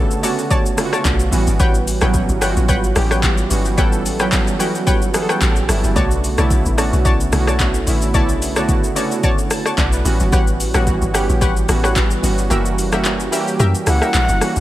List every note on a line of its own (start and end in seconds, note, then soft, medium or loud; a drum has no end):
0.00 0.19 B1 loud
0.00 1.34 C#3 medium
0.00 0.22 D3 medium
0.00 0.23 A3 medium
0.00 0.23 B3 medium
0.00 0.24 C#4 medium
0.00 0.25 F#4 loud
0.00 1.35 G4 medium
0.00 1.34 A4 loud
0.00 0.20 C#5 medium
0.00 0.20 D5 medium
0.00 0.21 A5 medium
0.11 shaker medium
0.22 0.68 D3 medium
0.22 0.68 A3 medium
0.22 0.68 B3 medium
0.22 0.68 C#4 medium
0.22 0.69 F#4 loud
0.22 0.49 C#5 medium
0.22 0.49 D5 medium
0.22 0.49 A5 medium
0.22 open hi-hat medium
0.22 shaker loud
0.39 shaker soft
0.50 0.63 C#5 loud
0.50 0.64 D5 medium
0.50 0.64 A5 loud
0.50 kick loud
0.50 shaker medium
0.66 shaker medium
0.77 1.22 D3 medium
0.77 1.22 A3 medium
0.77 1.23 B3 medium
0.77 1.23 C#4 medium
0.77 0.86 F4 medium
0.77 cross-stick loud
0.77 open hi-hat medium
0.77 shaker medium
0.85 1.26 F#4 loud
0.93 1.03 C#5 medium
0.93 1.03 D5 medium
0.93 1.04 A5 medium
0.93 cross-stick medium
0.93 shaker medium
1.05 1.31 B1 loud
1.05 kick medium
1.05 clap medium
1.05 shaker medium
1.20 shaker medium
1.31 1.47 A1 loud
1.31 1.86 E3 medium
1.31 1.87 G3 medium
1.31 1.87 B3 medium
1.31 1.87 C#4 medium
1.31 1.88 F#4 loud
1.31 open hi-hat medium
1.31 shaker loud
1.47 1.59 G1 medium
1.47 shaker medium
1.60 2.00 A1 loud
1.60 1.98 B4 loud
1.60 1.98 C#5 medium
1.60 1.98 F#5 medium
1.60 1.99 G5 loud
1.60 kick loud
1.60 shaker medium
1.74 shaker medium
1.88 open hi-hat soft
1.88 shaker medium
2.01 2.28 A1 loud
2.01 2.34 E3 medium
2.01 2.35 F#3 loud
2.01 2.34 G3 medium
2.01 2.34 B3 medium
2.01 2.34 C#4 medium
2.01 2.38 B4 medium
2.01 2.39 C#5 medium
2.01 2.39 F#5 medium
2.01 2.39 G5 medium
2.01 cross-stick loud
2.01 shaker medium
2.14 kick loud
2.14 shaker medium
2.29 2.55 G1 medium
2.29 shaker medium
2.41 2.86 E3 medium
2.41 2.86 G3 medium
2.41 2.86 B3 medium
2.41 2.87 C#4 medium
2.41 2.49 F4 medium
2.41 2.67 B4 medium
2.41 2.67 C#5 medium
2.41 2.67 F#5 medium
2.41 2.67 G5 medium
2.41 cross-stick medium
2.41 open hi-hat medium
2.41 shaker loud
2.49 2.90 F#4 loud
2.57 2.94 A1 medium
2.57 shaker medium
2.68 2.81 B4 loud
2.68 2.82 C#5 medium
2.68 2.82 F#5 medium
2.68 2.82 G5 loud
2.68 kick loud
2.68 shaker medium
2.84 shaker medium
2.95 3.48 A1 loud
2.95 3.40 E3 medium
2.95 3.41 G3 medium
2.95 3.41 B3 medium
2.95 3.41 C#4 medium
2.95 3.41 G4 loud
2.95 cross-stick loud
2.95 open hi-hat medium
2.95 shaker medium
3.11 3.21 B4 medium
3.11 3.22 C#5 medium
3.11 3.22 F#5 medium
3.11 3.22 G5 medium
3.11 cross-stick medium
3.11 shaker soft
3.23 kick medium
3.23 clap medium
3.23 shaker medium
3.38 shaker medium
3.50 3.79 G1 medium
3.50 3.73 E3 medium
3.50 3.73 G3 medium
3.50 3.73 B3 medium
3.50 3.73 C#4 medium
3.50 3.74 F#4 medium
3.50 open hi-hat medium
3.50 shaker medium
3.65 shaker medium
3.77 4.56 A1 loud
3.77 4.11 E3 medium
3.77 4.11 G3 medium
3.77 4.11 B3 medium
3.77 4.12 C#4 medium
3.77 4.12 A4 loud
3.77 4.16 B4 loud
3.77 4.17 C#5 medium
3.77 4.17 F#5 medium
3.77 4.17 G5 loud
3.77 kick loud
3.77 shaker medium
3.93 shaker medium
4.06 open hi-hat soft
4.06 shaker medium
4.19 4.52 E3 medium
4.19 4.53 F#3 loud
4.19 4.52 G3 medium
4.19 4.52 B3 medium
4.19 4.53 C#4 medium
4.19 4.56 B4 medium
4.19 4.57 C#5 medium
4.19 4.57 F#5 medium
4.19 4.57 G5 medium
4.19 cross-stick loud
4.19 shaker medium
4.32 kick loud
4.32 clap loud
4.32 shaker medium
4.47 shaker medium
4.59 5.04 E3 medium
4.59 5.04 G3 medium
4.59 5.04 B3 medium
4.59 5.05 C#4 medium
4.59 5.05 F#4 medium
4.59 4.85 B4 medium
4.59 4.85 C#5 medium
4.59 4.85 F#5 medium
4.59 4.85 G5 medium
4.59 open hi-hat medium
4.59 shaker loud
4.75 shaker medium
4.87 5.00 B4 loud
4.87 5.00 C#5 medium
4.87 5.00 F#5 medium
4.87 5.00 G5 loud
4.87 kick loud
4.87 shaker medium
5.02 shaker medium
5.13 5.58 E3 medium
5.13 5.59 G3 medium
5.13 5.59 B3 medium
5.13 5.59 C#4 medium
5.13 5.22 G#4 medium
5.13 5.40 F#5 medium
5.13 cross-stick loud
5.13 open hi-hat medium
5.13 shaker medium
5.22 5.63 A4 loud
5.29 5.40 B4 medium
5.29 5.40 C#5 medium
5.29 5.40 F#5 medium
5.29 5.40 G5 medium
5.29 cross-stick loud
5.29 shaker medium
5.41 5.68 A1 medium
5.41 5.67 G5 medium
5.41 kick medium
5.41 clap medium
5.41 shaker medium
5.56 shaker medium
5.68 5.83 G1 loud
5.68 5.91 E3 medium
5.68 5.91 G3 medium
5.68 5.91 B3 medium
5.68 5.92 C#4 medium
5.68 5.92 E4 medium
5.68 5.94 A5 medium
5.68 cross-stick loud
5.68 open hi-hat medium
5.68 shaker loud
5.84 5.96 F#1 medium
5.84 shaker medium
5.95 6.37 B1 loud
5.95 6.30 C#3 medium
5.95 6.29 D3 medium
5.95 6.29 A3 medium
5.95 6.29 B3 medium
5.95 6.30 F#4 loud
5.95 6.35 C#5 loud
5.95 6.35 D5 medium
5.95 6.35 A5 loud
5.95 kick loud
5.95 shaker medium
6.11 shaker medium
6.24 open hi-hat soft
6.24 shaker medium
6.38 6.64 B1 loud
6.38 6.71 C#3 medium
6.38 6.70 D3 medium
6.38 6.70 A3 medium
6.38 6.71 B3 medium
6.38 6.71 E4 loud
6.38 6.75 C#5 medium
6.38 6.75 D5 medium
6.38 6.75 A5 medium
6.38 cross-stick medium
6.38 shaker medium
6.50 kick loud
6.50 shaker medium
6.66 6.92 A1 medium
6.66 shaker medium
6.77 7.22 D3 medium
6.77 7.22 A3 medium
6.77 7.23 B3 medium
6.77 7.23 C#4 medium
6.77 7.23 F#4 loud
6.77 7.03 C#5 medium
6.77 7.03 D5 medium
6.77 7.03 A5 medium
6.77 cross-stick medium
6.77 open hi-hat medium
6.77 shaker loud
6.93 7.31 B1 loud
6.93 shaker medium
7.05 7.18 C#5 medium
7.05 7.18 D5 medium
7.05 7.18 A5 loud
7.05 kick loud
7.05 shaker medium
7.20 shaker medium
7.32 7.85 B1 loud
7.32 7.77 D3 medium
7.32 7.77 A3 medium
7.32 7.77 B3 medium
7.32 7.78 C#4 medium
7.32 7.40 E4 medium
7.32 cross-stick loud
7.32 open hi-hat medium
7.32 shaker medium
7.40 7.81 F#4 loud
7.47 7.58 C#5 medium
7.47 7.58 D5 medium
7.47 7.58 A5 medium
7.47 cross-stick medium
7.47 shaker medium
7.59 kick medium
7.59 clap medium
7.59 shaker medium
7.74 shaker medium
7.86 8.16 A1 medium
7.86 8.09 D3 medium
7.86 8.09 A3 medium
7.86 8.10 B3 medium
7.86 8.10 C#4 medium
7.86 8.10 E4 loud
7.86 open hi-hat medium
7.86 shaker medium
8.02 shaker medium
8.14 8.92 B1 loud
8.14 8.48 C#3 medium
8.14 8.47 D3 medium
8.14 8.47 A3 medium
8.14 8.48 B3 medium
8.14 8.48 E4 loud
8.14 8.53 C#5 loud
8.14 8.53 D5 medium
8.14 8.53 A5 loud
8.14 kick loud
8.14 shaker medium
8.29 shaker medium
8.42 open hi-hat soft
8.42 shaker medium
8.56 8.89 C#3 medium
8.56 8.88 D3 medium
8.56 8.89 A3 medium
8.56 8.89 B3 medium
8.56 8.89 F#4 loud
8.56 8.93 C#5 medium
8.56 8.93 D5 medium
8.56 8.93 A5 medium
8.56 cross-stick loud
8.56 shaker medium
8.69 kick loud
8.69 shaker medium
8.84 shaker soft
8.95 9.40 D3 medium
8.95 9.41 A3 medium
8.95 9.41 B3 medium
8.95 9.41 C#4 medium
8.95 9.41 F#4 medium
8.95 9.21 C#5 medium
8.95 9.22 D5 medium
8.95 9.22 A5 medium
8.95 open hi-hat medium
8.95 shaker medium
9.12 shaker soft
9.23 9.36 C#5 loud
9.23 9.36 D5 medium
9.23 9.37 A5 loud
9.23 kick loud
9.23 shaker medium
9.39 shaker medium
9.51 9.76 A5 medium
9.51 cross-stick loud
9.51 open hi-hat medium
9.51 shaker medium
9.66 9.76 C#5 medium
9.66 9.76 D5 medium
9.66 9.77 F#5 medium
9.66 9.76 A5 medium
9.66 cross-stick medium
9.66 shaker medium
9.78 10.04 B1 loud
9.78 9.92 D5 medium
9.78 10.29 F#5 medium
9.78 kick medium
9.78 clap medium
9.78 shaker medium
9.92 10.19 B4 medium
9.92 shaker medium
10.04 10.20 A1 loud
10.04 10.59 E3 medium
10.04 10.60 G3 medium
10.04 10.60 B3 medium
10.04 10.60 C#4 medium
10.04 10.60 F#4 loud
10.04 open hi-hat medium
10.04 shaker medium
10.20 10.32 G1 medium
10.20 shaker medium
10.32 10.73 A1 loud
10.32 10.71 G4 medium
10.32 10.71 B4 medium
10.32 10.71 C#5 medium
10.32 10.71 F#5 loud
10.32 kick loud
10.32 shaker medium
10.47 shaker medium
10.60 open hi-hat medium
10.60 shaker medium
10.74 11.01 A1 loud
10.74 11.06 E3 medium
10.74 11.07 G3 medium
10.74 11.07 B3 medium
10.74 11.07 C#4 medium
10.74 11.08 F#4 loud
10.74 11.11 G4 medium
10.74 11.11 B4 medium
10.74 11.11 C#5 medium
10.74 11.12 F#5 medium
10.74 cross-stick loud
10.74 shaker medium
10.87 kick loud
10.87 shaker medium
11.02 11.28 G1 loud
11.02 shaker medium
11.13 11.59 E3 medium
11.13 11.59 G3 medium
11.13 11.59 B3 medium
11.13 11.59 C#4 medium
11.13 11.39 G4 medium
11.13 11.60 G4 loud
11.13 11.39 B4 medium
11.13 11.40 C#5 medium
11.13 11.40 F#5 medium
11.13 cross-stick medium
11.13 open hi-hat medium
11.13 shaker loud
11.29 11.67 A1 medium
11.29 shaker soft
11.41 11.54 G4 loud
11.41 11.54 B4 medium
11.41 11.55 C#5 medium
11.41 11.55 F#5 loud
11.41 kick loud
11.41 shaker medium
11.57 shaker medium
11.68 12.21 A1 loud
11.68 12.13 E3 medium
11.68 12.13 G3 medium
11.68 12.14 B3 medium
11.68 12.14 C#4 medium
11.68 12.14 F#4 loud
11.68 cross-stick loud
11.68 open hi-hat medium
11.68 shaker medium
11.83 11.94 G4 medium
11.83 11.94 B4 medium
11.83 11.94 C#5 medium
11.83 11.94 F#5 medium
11.83 cross-stick medium
11.83 shaker medium
11.96 kick medium
11.96 clap medium
11.96 shaker medium
12.11 shaker medium
12.22 12.49 G1 medium
12.22 12.45 E3 medium
12.22 12.45 G3 medium
12.22 12.46 B3 medium
12.22 12.46 C#4 medium
12.22 12.46 F#4 medium
12.22 open hi-hat medium
12.22 shaker medium
12.38 shaker medium
12.50 13.28 F#1 loud
12.50 12.83 E3 medium
12.50 12.84 G3 medium
12.50 12.84 A#3 medium
12.50 12.84 C#4 medium
12.50 12.85 F#4 loud
12.50 12.89 G4 loud
12.50 12.89 A#4 medium
12.50 12.89 E5 loud
12.50 shaker medium
12.65 shaker medium
12.79 open hi-hat soft
12.79 shaker medium
12.92 13.25 E3 medium
12.92 13.25 G3 medium
12.92 13.25 A#3 medium
12.92 13.25 C#4 medium
12.92 13.26 F#4 loud
12.92 13.29 G4 medium
12.92 13.29 A#4 medium
12.92 13.30 E5 medium
12.92 cross-stick loud
12.92 shaker medium
13.05 clap medium
13.05 shaker medium
13.20 shaker medium
13.31 13.77 E3 medium
13.31 13.77 G3 medium
13.31 13.77 A#3 medium
13.31 13.77 C#4 medium
13.31 13.40 F#4 medium
13.31 13.58 G4 medium
13.31 13.58 A#4 medium
13.31 13.58 E5 medium
13.31 open hi-hat medium
13.31 shaker loud
13.40 13.81 G4 loud
13.48 shaker medium
13.59 13.74 F#2 loud
13.59 13.72 G4 loud
13.59 13.73 A#4 medium
13.59 13.73 E5 loud
13.59 shaker medium
13.75 shaker medium
13.86 14.01 C#2 medium
13.86 14.31 E3 medium
13.86 14.31 G3 medium
13.86 14.32 A#3 medium
13.86 14.32 C#4 medium
13.86 14.32 E4 medium
13.86 14.60 F#5 loud
13.86 cross-stick loud
13.86 open hi-hat medium
13.86 shaker medium
14.02 14.12 G4 medium
14.02 14.12 A#4 medium
14.02 14.13 E5 medium
14.02 cross-stick medium
14.02 shaker medium
14.14 14.29 A#1 loud
14.14 14.28 A#5 medium
14.14 clap medium
14.14 shaker medium
14.29 14.41 F#1 medium
14.29 14.60 F#5 medium
14.29 shaker medium
14.40 14.60 E3 medium
14.40 14.60 G3 medium
14.40 14.60 A#3 medium
14.40 14.60 C#4 medium
14.40 14.60 F#4 medium
14.40 cross-stick loud
14.40 open hi-hat medium
14.40 shaker medium
14.56 14.60 A1 medium
14.56 shaker medium